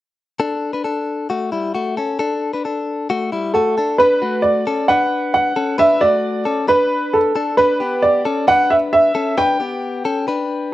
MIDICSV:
0, 0, Header, 1, 3, 480
1, 0, Start_track
1, 0, Key_signature, 2, "minor"
1, 0, Tempo, 449102
1, 425, Time_signature, 4, 2, 24, 8
1, 11475, End_track
2, 0, Start_track
2, 0, Title_t, "Upright piano"
2, 0, Program_c, 0, 0
2, 3780, Note_on_c, 0, 69, 76
2, 4229, Note_off_c, 0, 69, 0
2, 4258, Note_on_c, 0, 71, 82
2, 4708, Note_off_c, 0, 71, 0
2, 4727, Note_on_c, 0, 74, 78
2, 5218, Note_on_c, 0, 78, 92
2, 5231, Note_off_c, 0, 74, 0
2, 5690, Note_off_c, 0, 78, 0
2, 5706, Note_on_c, 0, 78, 84
2, 6153, Note_off_c, 0, 78, 0
2, 6189, Note_on_c, 0, 76, 92
2, 6423, Note_on_c, 0, 74, 83
2, 6435, Note_off_c, 0, 76, 0
2, 7102, Note_off_c, 0, 74, 0
2, 7146, Note_on_c, 0, 71, 88
2, 7625, Note_on_c, 0, 69, 74
2, 7640, Note_off_c, 0, 71, 0
2, 8072, Note_off_c, 0, 69, 0
2, 8093, Note_on_c, 0, 71, 81
2, 8546, Note_off_c, 0, 71, 0
2, 8576, Note_on_c, 0, 74, 83
2, 9062, Note_on_c, 0, 78, 101
2, 9076, Note_off_c, 0, 74, 0
2, 9302, Note_on_c, 0, 76, 83
2, 9312, Note_off_c, 0, 78, 0
2, 9357, Note_off_c, 0, 76, 0
2, 9542, Note_on_c, 0, 76, 92
2, 9990, Note_off_c, 0, 76, 0
2, 10023, Note_on_c, 0, 79, 94
2, 11422, Note_off_c, 0, 79, 0
2, 11475, End_track
3, 0, Start_track
3, 0, Title_t, "Clean electric guitar"
3, 0, Program_c, 1, 27
3, 424, Note_on_c, 1, 69, 80
3, 432, Note_on_c, 1, 62, 69
3, 763, Note_off_c, 1, 69, 0
3, 767, Note_off_c, 1, 62, 0
3, 783, Note_on_c, 1, 71, 58
3, 793, Note_on_c, 1, 62, 44
3, 897, Note_off_c, 1, 71, 0
3, 899, Note_off_c, 1, 62, 0
3, 902, Note_on_c, 1, 69, 61
3, 912, Note_on_c, 1, 62, 46
3, 1355, Note_off_c, 1, 69, 0
3, 1360, Note_off_c, 1, 62, 0
3, 1387, Note_on_c, 1, 66, 76
3, 1396, Note_on_c, 1, 57, 56
3, 1621, Note_off_c, 1, 66, 0
3, 1625, Note_on_c, 1, 64, 72
3, 1631, Note_off_c, 1, 57, 0
3, 1635, Note_on_c, 1, 55, 51
3, 1861, Note_off_c, 1, 64, 0
3, 1865, Note_on_c, 1, 66, 71
3, 1870, Note_off_c, 1, 55, 0
3, 1874, Note_on_c, 1, 57, 58
3, 2104, Note_off_c, 1, 66, 0
3, 2108, Note_on_c, 1, 69, 64
3, 2110, Note_off_c, 1, 57, 0
3, 2118, Note_on_c, 1, 61, 53
3, 2331, Note_off_c, 1, 69, 0
3, 2344, Note_on_c, 1, 69, 92
3, 2349, Note_off_c, 1, 61, 0
3, 2354, Note_on_c, 1, 62, 73
3, 2683, Note_off_c, 1, 69, 0
3, 2688, Note_off_c, 1, 62, 0
3, 2709, Note_on_c, 1, 71, 66
3, 2719, Note_on_c, 1, 62, 47
3, 2828, Note_off_c, 1, 62, 0
3, 2828, Note_off_c, 1, 71, 0
3, 2832, Note_on_c, 1, 69, 61
3, 2841, Note_on_c, 1, 62, 48
3, 3281, Note_off_c, 1, 69, 0
3, 3285, Note_off_c, 1, 62, 0
3, 3312, Note_on_c, 1, 66, 82
3, 3321, Note_on_c, 1, 57, 66
3, 3547, Note_off_c, 1, 66, 0
3, 3552, Note_on_c, 1, 64, 71
3, 3554, Note_off_c, 1, 57, 0
3, 3560, Note_on_c, 1, 55, 56
3, 3786, Note_off_c, 1, 64, 0
3, 3790, Note_on_c, 1, 66, 77
3, 3793, Note_off_c, 1, 55, 0
3, 3799, Note_on_c, 1, 57, 60
3, 4028, Note_off_c, 1, 66, 0
3, 4033, Note_off_c, 1, 57, 0
3, 4036, Note_on_c, 1, 69, 73
3, 4044, Note_on_c, 1, 62, 55
3, 4269, Note_off_c, 1, 69, 0
3, 4270, Note_off_c, 1, 62, 0
3, 4273, Note_on_c, 1, 71, 85
3, 4283, Note_on_c, 1, 62, 65
3, 4509, Note_on_c, 1, 66, 65
3, 4510, Note_off_c, 1, 71, 0
3, 4515, Note_off_c, 1, 62, 0
3, 4517, Note_on_c, 1, 57, 52
3, 4959, Note_off_c, 1, 66, 0
3, 4963, Note_off_c, 1, 57, 0
3, 4991, Note_on_c, 1, 69, 72
3, 4998, Note_on_c, 1, 61, 55
3, 5223, Note_off_c, 1, 69, 0
3, 5228, Note_on_c, 1, 71, 83
3, 5232, Note_off_c, 1, 61, 0
3, 5238, Note_on_c, 1, 62, 63
3, 5904, Note_off_c, 1, 71, 0
3, 5909, Note_off_c, 1, 62, 0
3, 5945, Note_on_c, 1, 69, 69
3, 5952, Note_on_c, 1, 61, 57
3, 6175, Note_off_c, 1, 69, 0
3, 6179, Note_on_c, 1, 71, 91
3, 6184, Note_off_c, 1, 61, 0
3, 6188, Note_on_c, 1, 62, 67
3, 6420, Note_on_c, 1, 66, 68
3, 6423, Note_off_c, 1, 71, 0
3, 6427, Note_off_c, 1, 62, 0
3, 6429, Note_on_c, 1, 57, 51
3, 6874, Note_off_c, 1, 66, 0
3, 6879, Note_off_c, 1, 57, 0
3, 6897, Note_on_c, 1, 69, 70
3, 6908, Note_on_c, 1, 61, 55
3, 7137, Note_off_c, 1, 69, 0
3, 7141, Note_on_c, 1, 71, 86
3, 7146, Note_off_c, 1, 61, 0
3, 7150, Note_on_c, 1, 62, 68
3, 7821, Note_off_c, 1, 71, 0
3, 7825, Note_off_c, 1, 62, 0
3, 7862, Note_on_c, 1, 69, 74
3, 7871, Note_on_c, 1, 62, 59
3, 8094, Note_off_c, 1, 69, 0
3, 8095, Note_off_c, 1, 62, 0
3, 8099, Note_on_c, 1, 71, 88
3, 8108, Note_on_c, 1, 62, 72
3, 8334, Note_off_c, 1, 71, 0
3, 8338, Note_on_c, 1, 67, 60
3, 8347, Note_off_c, 1, 62, 0
3, 8347, Note_on_c, 1, 59, 51
3, 8793, Note_off_c, 1, 67, 0
3, 8798, Note_off_c, 1, 59, 0
3, 8821, Note_on_c, 1, 69, 72
3, 8829, Note_on_c, 1, 61, 61
3, 9056, Note_off_c, 1, 69, 0
3, 9061, Note_on_c, 1, 71, 86
3, 9066, Note_off_c, 1, 61, 0
3, 9070, Note_on_c, 1, 62, 71
3, 9741, Note_off_c, 1, 71, 0
3, 9746, Note_off_c, 1, 62, 0
3, 9778, Note_on_c, 1, 69, 75
3, 9790, Note_on_c, 1, 61, 59
3, 10015, Note_off_c, 1, 69, 0
3, 10020, Note_on_c, 1, 71, 88
3, 10023, Note_off_c, 1, 61, 0
3, 10027, Note_on_c, 1, 62, 70
3, 10255, Note_off_c, 1, 71, 0
3, 10260, Note_on_c, 1, 67, 62
3, 10267, Note_off_c, 1, 62, 0
3, 10269, Note_on_c, 1, 59, 49
3, 10714, Note_off_c, 1, 67, 0
3, 10719, Note_off_c, 1, 59, 0
3, 10742, Note_on_c, 1, 69, 72
3, 10749, Note_on_c, 1, 61, 56
3, 10981, Note_off_c, 1, 69, 0
3, 10985, Note_on_c, 1, 71, 78
3, 10988, Note_off_c, 1, 61, 0
3, 10993, Note_on_c, 1, 62, 62
3, 11475, Note_off_c, 1, 62, 0
3, 11475, Note_off_c, 1, 71, 0
3, 11475, End_track
0, 0, End_of_file